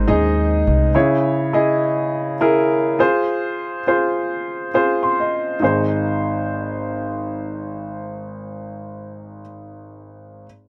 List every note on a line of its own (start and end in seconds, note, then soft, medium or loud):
0.00 0.97 G#2 medium
0.00 0.08 D#4 medium
0.00 0.08 G#4 medium
0.00 0.97 C5 medium
0.00 0.08 D#5 medium
0.08 0.63 D#2 medium
0.08 0.89 D#4 medium
0.08 0.89 G#4 medium
0.08 0.89 D#5 medium
0.67 0.94 C2 medium
0.95 1.79 C#3 medium
0.95 1.49 E4 medium
0.95 1.49 G#4 medium
0.95 1.49 C#5 medium
1.53 2.34 E4 medium
1.53 2.34 G#4 medium
1.53 2.35 D#5 medium
2.41 2.99 E4 medium
2.41 2.98 G#4 medium
2.41 3.00 A#4 medium
2.99 3.80 F4 medium
2.99 3.80 G#4 medium
2.99 3.81 C5 medium
3.87 4.68 F4 medium
3.87 4.68 G#4 medium
3.87 4.68 C5 medium
4.74 5.55 F4 medium
4.74 5.55 G#4 medium
4.74 5.55 C5 medium
5.03 5.18 C6 medium
5.20 5.59 D#5 soft
5.60 9.41 G#1 medium
5.60 9.40 D#4 medium
5.60 9.41 G#4 medium
5.64 9.42 C5 medium